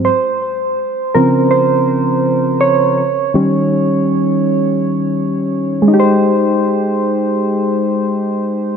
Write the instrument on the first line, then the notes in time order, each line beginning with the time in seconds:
synth keys
0.05 C5
1.15 C#3 F3 C4 A#4
1.51 C5
2.61 C#5
3.34 D#3 G3 C#4
5.82 G#3
5.88 D#4
5.94 G4
6.00 C5